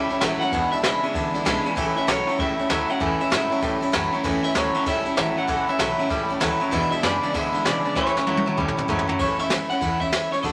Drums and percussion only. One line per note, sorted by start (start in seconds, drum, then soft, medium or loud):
0.10 ride medium
0.21 snare loud
0.21 ride medium
0.41 ride medium
0.52 kick loud
0.52 ride medium
0.72 ride medium
0.83 snare loud
0.83 ride medium
1.03 ride medium
1.15 kick loud
1.15 ride medium
1.35 ride medium
1.46 kick medium
1.46 snare loud
1.46 ride loud
1.66 ride medium
1.77 kick loud
1.77 ride medium
1.97 ride medium
2.08 snare loud
2.08 ride medium
2.28 ride medium
2.39 kick loud
2.39 ride medium
2.59 ride medium
2.70 snare loud
2.70 ride medium
2.89 ride medium
3.01 kick loud
3.01 ride medium
3.21 ride medium
3.32 snare loud
3.32 ride medium
3.52 ride medium
3.62 kick loud
3.62 snare soft
3.62 ride medium
3.82 ride medium
3.93 kick medium
3.93 snare loud
3.93 ride loud
4.13 ride medium
4.24 kick loud
4.24 ride medium
4.44 ride medium
4.55 snare loud
4.55 ride medium
4.74 ride medium
4.86 kick loud
4.86 ride medium
5.05 ride medium
5.17 snare loud
5.17 ride medium
5.37 ride medium
5.48 kick loud
5.48 ride medium
5.68 ride medium
5.79 snare loud
5.79 ride medium
5.99 ride medium
6.10 kick loud
6.10 snare soft
6.10 ride medium
6.29 ride medium
6.41 kick medium
6.41 snare loud
6.41 ride loud
6.60 ride medium
6.72 kick loud
6.72 ride medium
6.92 ride medium
7.03 snare loud
7.03 ride medium
7.23 ride medium
7.34 kick loud
7.34 snare soft
7.34 ride medium
7.54 ride medium
7.65 snare loud
7.65 ride medium
7.85 ride medium
7.96 kick loud
7.96 snare medium
8.06 snare medium
8.17 snare medium
8.27 high tom medium
8.37 high tom medium
8.47 mid tom medium
8.57 kick loud
8.57 mid tom medium
8.68 mid tom medium
8.78 mid tom medium
8.89 kick medium
8.89 floor tom loud
8.99 floor tom loud
9.09 floor tom medium
9.19 kick loud
9.19 ride medium
9.39 ride medium
9.50 snare loud
9.50 ride loud
9.70 ride medium
9.81 kick loud
9.81 ride medium
10.01 kick medium
10.01 ride medium
10.12 snare loud
10.12 ride loud
10.33 snare soft
10.33 ride medium
10.44 kick loud
10.44 ride medium